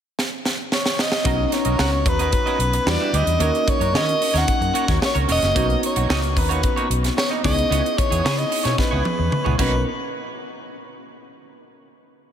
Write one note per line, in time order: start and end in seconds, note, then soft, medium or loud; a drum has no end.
0.19 snare medium
0.46 snare medium
0.72 1.02 C#5 medium
0.72 snare medium
0.86 snare medium
0.99 1.46 D#5 medium
0.99 snare medium
1.12 snare medium
1.24 1.44 B1 loud
1.24 2.83 B3 medium
1.24 2.83 C#4 medium
1.24 1.44 C#4 medium
1.24 2.83 D#4 medium
1.24 2.84 F#4 medium
1.24 1.39 F#4 medium
1.24 1.38 A#4 medium
1.24 1.37 D#5 medium
1.24 2.84 A#5 medium
1.24 kick loud
1.24 closed hi-hat medium
1.38 muted clean electric guitar stroke soft
1.46 1.54 D#5 medium
1.52 2.10 C#5 medium
1.52 muted clean electric guitar stroke soft
1.52 snare soft
1.52 closed hi-hat medium
1.65 1.75 B1 medium
1.65 1.77 C#4 soft
1.65 1.78 F#4 soft
1.65 1.78 A#4 soft
1.65 1.79 D#5 soft
1.65 closed hi-hat soft
1.78 2.06 C#2 medium
1.78 1.98 C#4 medium
1.78 1.92 F#4 medium
1.78 1.92 A#4 medium
1.78 1.92 F#5 medium
1.78 snare medium
1.92 muted clean electric guitar stroke soft
2.06 2.34 D#2 medium
2.06 2.21 B4 medium
2.06 muted clean electric guitar stroke soft
2.06 kick loud
2.06 closed hi-hat medium
2.19 2.32 C#4 soft
2.19 2.32 F#4 medium
2.19 2.33 A#4 medium
2.19 2.91 B4 medium
2.19 2.33 D#5 medium
2.19 closed hi-hat soft
2.32 muted clean electric guitar stroke soft
2.32 kick medium
2.32 closed hi-hat medium
2.46 2.59 C#4 medium
2.46 2.59 F#4 medium
2.46 2.60 A#4 medium
2.46 2.60 D#5 medium
2.46 closed hi-hat soft
2.59 2.78 B1 medium
2.59 muted clean electric guitar stroke soft
2.59 closed hi-hat medium
2.73 muted clean electric guitar stroke soft
2.73 closed hi-hat medium
2.86 2.96 E2 medium
2.86 3.40 G3 medium
2.86 3.40 D4 medium
2.86 3.40 E4 medium
2.86 3.40 F#4 medium
2.86 3.41 B4 medium
2.86 3.17 D5 medium
2.86 muted clean electric guitar stroke soft
2.86 snare medium
3.00 3.12 D4 soft
3.00 3.12 G4 medium
3.00 3.13 B4 medium
3.00 3.14 E5 medium
3.13 3.23 D2 loud
3.13 3.32 D4 medium
3.13 3.27 G4 medium
3.13 3.26 B4 medium
3.13 3.25 D5 medium
3.13 3.71 D#5 medium
3.13 closed hi-hat medium
3.26 3.36 E2 medium
3.26 muted clean electric guitar stroke soft
3.26 closed hi-hat soft
3.39 3.49 D#2 loud
3.39 5.51 A#3 medium
3.39 5.51 C#4 medium
3.39 3.59 C#4 medium
3.39 5.51 D#4 medium
3.39 5.52 F#4 medium
3.39 3.54 F#4 medium
3.39 5.52 A#4 medium
3.39 3.53 A#4 medium
3.39 3.53 C#5 medium
3.39 closed hi-hat medium
3.54 muted clean electric guitar stroke soft
3.54 closed hi-hat soft
3.67 3.98 C#5 medium
3.67 muted clean electric guitar stroke soft
3.67 kick medium
3.67 closed hi-hat medium
3.80 3.95 F#2 medium
3.80 3.93 C#4 soft
3.80 3.94 F#4 medium
3.80 3.94 A#4 medium
3.80 3.95 C#5 medium
3.80 closed hi-hat soft
3.94 4.12 D#3 loud
3.94 4.13 C#4 medium
3.94 4.07 F#4 medium
3.94 4.07 A#4 medium
3.94 4.06 C#5 loud
3.94 4.39 D#5 medium
3.94 snare medium
4.07 muted clean electric guitar stroke soft
4.07 closed hi-hat soft
4.21 muted clean electric guitar stroke soft
4.21 open hi-hat medium
4.33 4.43 D#2 medium
4.33 4.46 C#4 soft
4.33 4.46 F#4 medium
4.33 4.47 A#4 medium
4.33 4.47 C#5 medium
4.33 snare soft
4.33 closed hi-hat soft
4.37 4.90 F#5 loud
4.47 muted clean electric guitar stroke soft
4.47 kick medium
4.47 closed hi-hat medium
4.61 4.70 F#2 medium
4.61 muted clean electric guitar stroke soft
4.61 closed hi-hat soft
4.74 4.88 C#4 medium
4.74 4.88 F#4 medium
4.74 4.87 A#4 medium
4.74 4.86 C#5 medium
4.74 closed hi-hat medium
4.87 4.98 D#2 medium
4.87 5.00 C#4 soft
4.87 5.00 F#4 soft
4.87 5.01 A#4 medium
4.87 5.01 C#5 soft
4.87 kick medium
4.87 snare soft
4.87 closed hi-hat soft
5.01 muted clean electric guitar stroke soft
5.01 snare medium
5.05 5.16 C#5 medium
5.14 5.24 C#2 medium
5.14 5.27 C#4 soft
5.14 5.28 F#4 medium
5.14 5.28 A#4 medium
5.14 5.29 C#5 medium
5.14 closed hi-hat soft
5.28 5.38 E1 medium
5.28 5.47 C#4 medium
5.28 5.41 F#4 medium
5.28 5.41 A#4 medium
5.28 5.40 C#5 medium
5.28 open hi-hat medium
5.32 5.80 D#5 loud
5.42 5.52 F#1 medium
5.42 muted clean electric guitar stroke soft
5.42 snare soft
5.42 closed hi-hat soft
5.55 5.74 B1 loud
5.55 5.74 A#3 medium
5.55 7.39 B3 medium
5.55 7.40 C#4 medium
5.55 7.40 D#4 medium
5.55 5.69 D#4 medium
5.55 5.68 F#4 medium
5.55 7.40 F#4 medium
5.55 5.68 C#5 medium
5.55 7.41 A#5 medium
5.55 kick loud
5.55 closed hi-hat medium
5.69 muted clean electric guitar stroke soft
5.69 closed hi-hat soft
5.82 6.39 C#5 medium
5.82 muted clean electric guitar stroke soft
5.82 closed hi-hat medium
5.96 6.05 B1 medium
5.96 6.08 A#3 medium
5.96 6.08 D#4 medium
5.96 6.09 F#4 medium
5.96 6.10 C#5 medium
5.96 closed hi-hat soft
6.09 6.37 C#2 medium
6.09 6.28 A#3 medium
6.09 6.23 D#4 loud
6.09 6.22 F#4 medium
6.09 6.22 D#5 loud
6.09 snare loud
6.22 muted clean electric guitar stroke soft
6.22 closed hi-hat soft
6.36 6.64 D#2 medium
6.36 6.50 B4 medium
6.36 muted clean electric guitar stroke soft
6.36 kick medium
6.36 open hi-hat medium
6.49 6.62 A#3 soft
6.49 6.62 D#4 medium
6.49 6.63 F#4 medium
6.49 6.88 B4 medium
6.49 6.63 C#5 medium
6.49 closed hi-hat soft
6.63 kick medium
6.63 closed hi-hat medium
6.76 6.88 A#3 medium
6.76 6.89 D#4 medium
6.76 6.89 F#4 medium
6.76 6.90 C#5 medium
6.76 closed hi-hat soft
6.90 7.08 B1 medium
6.90 muted clean electric guitar stroke soft
6.90 closed hi-hat medium
7.03 muted clean electric guitar stroke soft
7.03 snare soft
7.03 closed hi-hat medium
7.17 7.30 C#5 medium
7.17 muted clean electric guitar stroke soft
7.17 snare loud
7.30 7.43 A#3 soft
7.30 7.44 D#4 medium
7.30 7.44 F#4 medium
7.30 7.45 D#5 medium
7.43 7.63 C#2 medium
7.43 9.54 B3 medium
7.43 7.63 B3 medium
7.43 9.54 C#4 medium
7.43 9.55 D#4 soft
7.43 7.57 E4 medium
7.43 9.55 E4 medium
7.43 7.57 G#4 medium
7.43 9.55 G#4 medium
7.43 7.56 C#5 medium
7.43 8.00 D#5 loud
7.43 kick medium
7.43 open hi-hat medium
7.57 muted clean electric guitar stroke soft
7.57 closed hi-hat soft
7.70 7.80 C#2 loud
7.70 7.89 B3 medium
7.70 7.84 E4 medium
7.70 7.83 G#4 medium
7.70 7.83 C#5 medium
7.70 closed hi-hat medium
7.84 muted clean electric guitar stroke soft
7.84 closed hi-hat soft
7.97 8.40 C#5 medium
7.97 muted clean electric guitar stroke soft
7.97 kick medium
7.97 closed hi-hat medium
8.10 8.20 E2 medium
8.10 8.22 B3 medium
8.10 8.23 E4 soft
8.10 8.24 G#4 medium
8.10 8.24 C#5 medium
8.10 closed hi-hat soft
8.23 8.43 C#3 medium
8.23 8.43 B3 medium
8.23 8.37 E4 medium
8.23 8.37 G#4 loud
8.23 8.36 C#5 loud
8.23 snare loud
8.37 8.67 D#5 medium
8.37 muted clean electric guitar stroke soft
8.37 closed hi-hat soft
8.50 muted clean electric guitar stroke soft
8.50 open hi-hat medium
8.64 8.74 B2 medium
8.64 8.77 B3 soft
8.64 8.77 E4 soft
8.64 8.78 G#4 medium
8.64 8.78 C#5 medium
8.64 snare soft
8.64 closed hi-hat soft
8.78 9.55 B4 medium
8.78 muted clean electric guitar stroke soft
8.78 kick medium
8.78 snare medium
8.91 9.01 C#2 medium
8.91 9.04 B3 medium
8.91 9.04 E4 medium
8.91 9.04 G#4 medium
8.91 9.05 C#5 medium
9.05 muted clean electric guitar stroke soft
9.05 high tom medium
9.18 9.28 E2 medium
9.18 muted clean electric guitar stroke soft
9.31 muted clean electric guitar stroke soft
9.31 mid tom medium
9.44 9.55 C#2 medium
9.44 9.57 B3 soft
9.44 9.58 E4 soft
9.44 9.58 G#4 medium
9.44 9.58 C#5 medium
9.44 mid tom medium
9.58 9.84 B1 medium
9.58 9.74 A#3 medium
9.58 9.84 B3 medium
9.58 9.84 C#4 medium
9.58 9.75 D#4 medium
9.58 9.84 D#4 medium
9.58 9.75 F#4 medium
9.58 9.84 F#4 medium
9.58 9.84 A#4 medium
9.58 9.84 B4 medium
9.58 9.75 C#5 medium
9.58 kick medium
9.58 crash medium